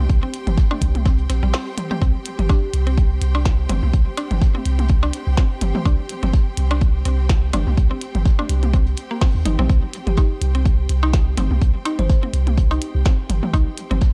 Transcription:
Already playing: C4 G4 G5 C6
0.09 C2, kick, closed hi-hat
0.23 C4
0.34 closed hi-hat
0.47 G1, closed hi-hat, mid tom
0.57 kick, snare, closed hi-hat
0.71 D4, high tom, percussion blips
0.81 C2, kick, closed hi-hat
0.95 closed hi-hat, high tom
1.05 C4, kick, snare, closed hi-hat
1.18 closed hi-hat
1.29 A#1 C4, snare, closed hi-hat
1.43 A#1 G3
1.53 C4, snare, open hi-hat, percussion blips
1.78 closed hi-hat, mid tom
1.91 G4, mid tom, high tom
2.02 C2 C4, kick, closed hi-hat
2.25 closed hi-hat
2.39 G1 G4, closed hi-hat, mid tom
2.49 D4 G4, kick, snare, closed hi-hat, percussion blips
2.73 C2, closed hi-hat
2.87 C4, closed hi-hat
2.98 kick, closed hi-hat
3.21 C2, closed hi-hat
3.35 D4, percussion blips
3.45 kick, snare, closed hi-hat
3.69 G1 C4, snare, closed hi-hat, mid tom, high tom
3.83 C2, high tom
3.93 C2, kick, closed hi-hat
4.17 D4, closed hi-hat, percussion blips
4.31 G1, closed hi-hat, mid tom
4.42 kick, snare, closed hi-hat
4.55 C4, high tom
4.65 C2, closed hi-hat
4.79 closed hi-hat, high tom
4.88 kick, closed hi-hat
5.02 D4, closed hi-hat, percussion blips
5.13 closed hi-hat
5.27 C2
5.37 C4, kick, snare, closed hi-hat
5.61 G1, closed hi-hat, mid tom
5.75 mid tom, high tom
5.85 C2 D4, kick, closed hi-hat, percussion blips
6.09 closed hi-hat
6.23 G1 C4, closed hi-hat, mid tom
6.33 kick, snare, closed hi-hat
6.57 C2, closed hi-hat
6.71 D4, closed hi-hat, percussion blips
6.81 kick, closed hi-hat
7.05 C2 C4, closed hi-hat
7.29 kick, snare, closed hi-hat
7.53 G1 D4, snare, closed hi-hat, mid tom, high tom, percussion blips
7.67 C2, high tom
7.77 C2, kick, closed hi-hat
7.91 C4
8.01 closed hi-hat
8.15 G1, closed hi-hat, mid tom
8.25 kick, snare, closed hi-hat
8.39 D4, high tom, percussion blips
8.49 C2, closed hi-hat
8.63 closed hi-hat, high tom
8.73 C4, kick, closed hi-hat
8.87 closed hi-hat
8.97 closed hi-hat
9.11 A#3
9.21 C4, kick, snare, open hi-hat, percussion blips
9.35 D#2
9.45 G1 D#4, closed hi-hat, mid tom
9.59 A#1 C4, mid tom, high tom
9.69 C2 C4, kick, closed hi-hat
9.93 closed hi-hat
10.07 G1 G4, closed hi-hat, mid tom
10.17 D#4 G4, kick, snare, closed hi-hat, percussion blips
10.41 C2, closed hi-hat
10.55 C4, closed hi-hat
10.65 kick, closed hi-hat
10.89 C2, closed hi-hat
11.03 D#4, percussion blips
11.13 kick, snare, closed hi-hat
11.37 G1 C4, snare, closed hi-hat, mid tom, high tom
11.51 C2, high tom
11.62 C2, kick, closed hi-hat
11.85 D#4, closed hi-hat, percussion blips
11.99 G1 C5, closed hi-hat, mid tom
12.09 C5, kick, snare, closed hi-hat
12.23 C4, high tom
12.33 C2, closed hi-hat
12.47 closed hi-hat, high tom
12.58 kick, closed hi-hat
12.71 D#4, closed hi-hat, percussion blips
12.81 closed hi-hat
12.95 C2
13.05 C4, kick, snare, closed hi-hat
13.29 G1, closed hi-hat, mid tom
13.43 mid tom, high tom
13.54 C2 D#4, kick, closed hi-hat, percussion blips
13.78 closed hi-hat
13.91 G1 C4, closed hi-hat, mid tom
14.01 kick, snare, closed hi-hat

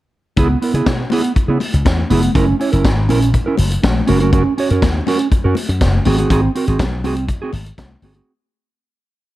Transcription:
0.37 C#2 B3 E4 G#4, kick, closed hi-hat, muted conga
0.50 muted clean electric guitar stroke
0.62 B3 E4 A#4, open hi-hat
0.74 C#3 B3 E4 G#4, closed hi-hat
0.86 B2, kick, snare, closed hi-hat, high conga
1.00 muted clean electric guitar stroke
1.10 B3 E4 G#4, open hi-hat, muted conga
1.24 muted clean electric guitar stroke, closed hi-hat
1.36 muted clean electric guitar stroke, muted slap bass stroke, kick, closed hi-hat
1.48 C#3 B3 E4 G#4
1.60 muted clean electric guitar stroke, open hi-hat, muted conga
1.73 C#2, muted clean electric guitar stroke, closed hi-hat
1.85 E2, kick, snare, closed hi-hat, high conga
1.98 muted clean electric guitar stroke
2.10 F1 B3 E4 G#4, open hi-hat, high conga
2.22 muted clean electric guitar stroke, closed hi-hat
2.35 F#1 C#4 E4 A#4, kick, closed hi-hat
2.48 muted clean electric guitar stroke
2.60 C#4 E4 C#5, open hi-hat
2.72 F#1 C#4 E4 A#4, closed hi-hat
2.84 G#1, kick, snare, closed hi-hat, high conga
2.97 muted clean electric guitar stroke
3.09 A#1 C#4 E4 A#4, open hi-hat, muted conga
3.22 muted clean electric guitar stroke, closed hi-hat
3.34 muted clean electric guitar stroke, kick, closed hi-hat
3.46 C#4 E4 A#4
3.57 F#1, muted clean electric guitar stroke, open hi-hat, muted conga
3.71 muted clean electric guitar stroke, closed hi-hat
3.83 A#1, muted clean electric guitar stroke, kick, snare, closed hi-hat, high conga
3.95 muted clean electric guitar stroke
4.07 F#1 C#4 F#4 A#4, open hi-hat, high conga
4.20 C#4 F#4 A#4, closed hi-hat
4.32 C#4 F#4 A#4, kick, closed hi-hat, muted conga
4.45 muted clean electric guitar stroke
4.58 C#4 F#4 C#5, open hi-hat
4.70 F#2 C#4 F#4 A#4, closed hi-hat
4.82 D#2, kick, snare, closed hi-hat, high conga
4.95 muted clean electric guitar stroke
5.07 C#4 F#4 A#4, open hi-hat, muted conga
5.19 muted clean electric guitar stroke, closed hi-hat
5.32 muted slap bass stroke, muted clean electric guitar stroke, kick, closed hi-hat
5.44 F#2 C#4 F#4 A#4
5.55 muted clean electric guitar stroke, open hi-hat, muted conga
5.69 F#2, muted clean electric guitar stroke, closed hi-hat
5.81 F#1, muted clean electric guitar stroke, kick, snare, closed hi-hat, high conga
5.93 muted clean electric guitar stroke
6.05 G#1 C4 F#4 G#4, open hi-hat, high conga
6.18 C4 F#4 G#4, closed hi-hat
6.30 G#1 C4 F#4 G#4, kick, closed hi-hat
6.43 muted clean electric guitar stroke
6.55 C4 F#4 A#4, open hi-hat
6.68 G#1 C4 F#4 G#4, closed hi-hat
6.79 B1, kick, snare, closed hi-hat, high conga
6.93 muted clean electric guitar stroke
7.04 C2 C4 F#4 G#4, open hi-hat, muted conga
7.16 muted clean electric guitar stroke, closed hi-hat
7.28 muted clean electric guitar stroke, kick, closed hi-hat
7.42 C4 F#4 G#4
7.53 G#1, muted clean electric guitar stroke, open hi-hat, muted conga
7.66 muted clean electric guitar stroke, closed hi-hat
7.78 C2, muted clean electric guitar stroke, kick, snare, closed hi-hat, high conga
7.90 muted clean electric guitar stroke
8.02 G1 C4 F#4 G#4, open hi-hat, high conga
8.14 C4 F#4, closed hi-hat

